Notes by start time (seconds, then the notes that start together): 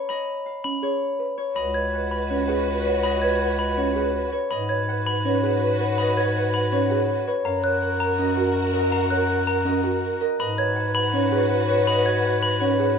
Already playing: C#5 F5
0.09 D#5 B5
0.46 F5
0.64 C#4 B5
0.83 G#4 C#5
1.19 B4
1.38 C#5
1.55 C#2 F#4 B4 D#5 B5
1.74 B4 C#5 G#6
1.93 B4 F#5
2.11 B4 B5
2.29 C#4 B4 C#5
2.48 G#4 B4 F#5
2.66 B4
2.84 B4 C#5
3.03 B4 D#5 B5
3.22 B4 C#5 G#6
3.40 B4 F#5
3.59 B4 B5
3.77 C#4 B4 C#5
3.96 G#4 B4 F#5
4.15 B4
4.32 B4 C#5
4.51 G#2 F#4 B4 D#5 B5
4.69 B4 C#5 G#6
4.89 B4 F#5
5.06 B4 B5
5.25 C#4 B4 C#5
5.43 G#4 B4 F#5
5.62 B4
5.80 B4 C#5
5.98 B4 D#5 B5
6.17 B4 C#5 G#6
6.35 B4 F#5
6.54 B4 B5
6.72 C#4 B4 C#5
6.90 G#4 B4 F#5
7.09 B4
7.27 B4 C#5
7.45 F#2 F#4 A#4 F5 A#5
7.64 A#4 C#5 F#6
7.82 A#4 F#5
8.00 A#4 A#5
8.18 C#4 A#4 D#5
8.36 F#4 A#4 F#5
8.57 A#4
8.74 A#4 D#5
8.91 A#4 F5 A#5
9.10 A#4 C#5 F#6
9.28 A#4 F#5
9.47 A#4 A#5
9.65 C#4 A#4 D#5
9.84 F#4 A#4 F#5
10.02 A#4
10.21 A#4 D#5
10.39 G#2 F#4 B4 D#5 B5
10.58 B4 C#5 G#6
10.76 B4 F#5
10.95 B4 B5
11.13 C#4 B4 C#5
11.32 G#4 B4 F#5
11.51 B4
11.68 B4 C#5
11.87 B4 D#5 B5
12.06 B4 C#5 G#6
12.24 B4 F#5
12.43 B4 B5
12.60 C#4 B4 C#5
12.79 G#4 B4 F#5